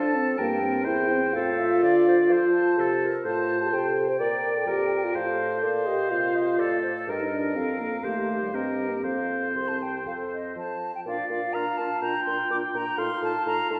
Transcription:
Already playing: F3 D4 A4 A5
0.15 C4
0.37 G2 A#3 A#4 G5
0.62 C4
0.84 E2 E4 C5 G5
1.10 C4
1.33 A2 F4 A4 C5 F5
1.60 E5
1.82 D3 D5 F5
2.08 C5
2.29 F3 A4 C5 F5
2.52 A5
2.78 C3 A4
3.02 A#4
3.24 A2 F4 C5 A5
3.62 G4
3.72 C3 A4 C5 G5
4.09 C5
4.20 A#2 A#4 D5
4.56 A4
4.67 F2 G4 A#4 D5
5.04 F4
5.15 A2 A4 C5 F5
5.62 A#2 C5 D5 F5
5.87 G4 D#5
6.10 C3 F4 F5
6.35 D#5
6.58 A2 A4 D5
6.83 C5
7.07 G2 G4 A#4 D#5
7.20 D#4
7.32 D4
7.55 F2 C4 A4 F5
7.80 A#3
8.03 D#2 A3 G4 C5
8.42 G3
8.53 G2 C4 G4 A#4 D#5
8.91 A#3
9.02 F2 C4 C5 F5
9.54 C2 C6
9.68 A5
9.82 G5
10.06 F2 A4 F5
10.33 D#5
10.56 F3 A5
10.95 G5
11.06 A#2 D4 F4 D5 F5
11.30 A#2 D4 F4 F5
11.53 A#2 D4 F4 F5 A#5
11.78 A#2 D4 F4 A5
12.02 A#2 D4 F4 G5 A#5
12.26 A#2 D4 F4 C6
12.50 A#2 D4 F4 D6
12.74 A#2 D4 F4 A#5
12.98 A2 D#4 F4 F5 C6
13.22 A2 D#4 F4 A5
13.46 A2 D#4 F4 A#5
13.70 A2 D#4 F4 A5

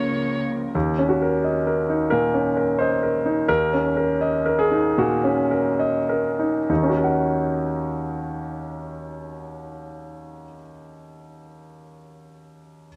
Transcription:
Already playing: C#2 C#3 F3 A#3 F4 A#4 C#5 F5
0.75 D#2
0.99 C#4
1.09 F#4
1.22 A#4
1.44 D#5
1.67 A#4
1.89 D#4
2.10 A#2 A#4
2.34 C#4
2.57 A#4
2.79 C5 D#5
3.03 A#4
3.25 D#4
3.48 D#2 A#4
3.73 C#4
3.97 A#4
4.21 D#5
4.46 A#4
4.59 G#4
4.71 D#4
4.98 A#2 F#4
5.24 C#4
5.51 A#4
5.79 D#5
6.09 A#4
6.39 D#4
6.69 D#2 D#4
6.76 D#3
6.83 C#4
6.90 F#4
6.97 A#4
7.04 F#5

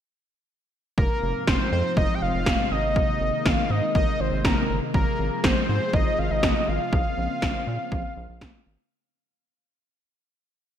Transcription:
0.98 F1 G#2 C3 F3 C4 F4 A#4, kick
1.23 F1
1.47 F1 C5, kick, snare
1.72 F2 C5
1.97 F1 D#5, kick
2.14 G5
2.22 F1 F5
2.34 F1
2.46 F1, kick, snare
2.71 G#1 D#3 G#3 A#3 D#4 D#5
2.96 kick
3.21 G#1
3.46 G#1 F5, kick, snare
3.70 G#2 D#5
3.95 G#1 D#5, kick
4.20 G#1 C5
4.32 G#1
4.45 G#1 A#4, kick, snare
4.70 G1
4.94 G#1 F3 F4 G#4 A#4, kick
5.19 G#1
5.44 G#1 C5, kick, snare
5.69 G#2 C5
5.93 G#1 D#5, kick
6.18 G#1 F5
6.31 G#1 D#5
6.43 G#1, kick, snare
6.68 G#1 F5
6.92 A#1 C#3 A#3 C4, kick
7.17 A#1
7.42 A#1, kick, snare
7.67 A#2
7.92 A#1, kick
8.17 A#1
8.29 A#1
8.41 A#1, kick, snare
8.66 G#1

